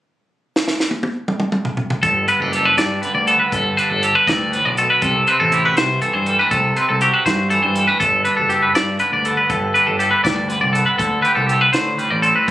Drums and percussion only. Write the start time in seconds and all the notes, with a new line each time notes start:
0.56 snare
0.68 snare
0.80 snare
0.91 high tom
1.03 high tom
1.28 mid tom
1.40 mid tom
1.52 mid tom
1.65 floor tom
1.77 floor tom
1.90 floor tom
2.03 kick, closed hi-hat
2.28 closed hi-hat
2.53 closed hi-hat
2.78 snare, closed hi-hat
3.03 closed hi-hat
3.27 closed hi-hat
3.52 kick, closed hi-hat
3.78 closed hi-hat
4.03 closed hi-hat
4.28 kick, snare, closed hi-hat
4.53 closed hi-hat
4.77 closed hi-hat
5.02 kick, closed hi-hat
5.27 closed hi-hat
5.52 closed hi-hat
5.77 snare, closed hi-hat
6.02 closed hi-hat
6.26 closed hi-hat
6.51 kick, closed hi-hat
6.76 closed hi-hat
7.01 closed hi-hat
7.26 kick, snare, closed hi-hat
7.50 closed hi-hat
7.75 closed hi-hat
8.00 kick, closed hi-hat
8.25 closed hi-hat
8.50 closed hi-hat
8.75 snare, closed hi-hat
8.99 closed hi-hat
9.25 closed hi-hat
9.50 kick, closed hi-hat
9.75 closed hi-hat
10.00 closed hi-hat
10.25 kick, snare, closed hi-hat
10.50 closed hi-hat
10.75 closed hi-hat
10.99 kick, closed hi-hat
11.25 closed hi-hat
11.49 closed hi-hat
11.73 snare, closed hi-hat
11.99 closed hi-hat
12.23 closed hi-hat